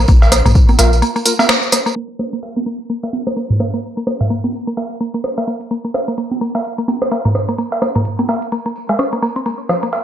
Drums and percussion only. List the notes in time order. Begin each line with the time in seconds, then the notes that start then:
0.08 kick, tambourine
0.22 tambourine, cowbell
0.32 cross-stick, open hi-hat, tambourine
0.46 mid tom, tambourine
0.55 kick, tambourine
0.69 tambourine, high conga
0.79 open hi-hat, tambourine, cowbell
0.93 tambourine
1.02 tambourine
1.16 tambourine
1.25 open hi-hat, tambourine
1.39 tambourine, cowbell, high conga
1.49 finger snap, cross-stick, tambourine
1.63 tambourine
1.72 cross-stick, open hi-hat, tambourine
1.86 tambourine
1.96 closed hi-hat
2.19 cross-stick, tambourine
2.33 closed hi-hat
2.43 closed hi-hat, tambourine, cowbell
2.56 high conga
2.65 tambourine
2.80 closed hi-hat, tambourine
2.89 closed hi-hat, tambourine
3.03 closed hi-hat, cowbell
3.13 tambourine, high conga
3.27 cross-stick, closed hi-hat, tambourine
3.37 closed hi-hat, tambourine
3.50 closed hi-hat, mid tom
3.60 cross-stick, tambourine, cowbell
3.74 closed hi-hat, tambourine
3.83 closed hi-hat, tambourine
3.97 tambourine
4.07 cross-stick, tambourine
4.21 closed hi-hat, mid tom, tambourine, cowbell
4.30 closed hi-hat, tambourine
4.44 tambourine, high conga
4.54 tambourine
4.67 closed hi-hat, tambourine
4.77 closed hi-hat, tambourine, cowbell
4.91 closed hi-hat, tambourine
5.01 tambourine
5.14 closed hi-hat, tambourine
5.24 cross-stick, closed hi-hat, tambourine
5.38 closed hi-hat, tambourine, cowbell
5.48 tambourine
5.61 closed hi-hat, tambourine
5.71 closed hi-hat, tambourine
5.85 tambourine
5.94 cross-stick, tambourine, cowbell
6.08 closed hi-hat, tambourine
6.18 closed hi-hat, tambourine
6.31 tambourine, high conga
6.41 tambourine
6.55 closed hi-hat, tambourine, cowbell
6.64 closed hi-hat, tambourine
6.78 closed hi-hat, tambourine
6.88 tambourine, high conga
7.02 cross-stick, closed hi-hat, tambourine
7.12 closed hi-hat, tambourine, cowbell
7.25 closed hi-hat, mid tom, tambourine
7.35 cross-stick, tambourine
7.48 closed hi-hat, tambourine
7.58 closed hi-hat, tambourine
7.72 tambourine, cowbell
7.82 cross-stick, tambourine
7.95 closed hi-hat, mid tom, tambourine
8.05 closed hi-hat, tambourine
8.19 closed hi-hat, tambourine, high conga
8.28 tambourine, cowbell
8.42 closed hi-hat, tambourine
8.52 closed hi-hat, tambourine
8.66 closed hi-hat, tambourine
8.76 tambourine
8.89 closed hi-hat, tambourine, cowbell
8.99 cross-stick, closed hi-hat, tambourine
9.13 closed hi-hat, tambourine
9.22 tambourine
9.36 closed hi-hat, tambourine
9.46 closed hi-hat, tambourine
9.59 tambourine
9.69 cross-stick, tambourine
9.83 closed hi-hat, tambourine
9.93 closed hi-hat, tambourine, cowbell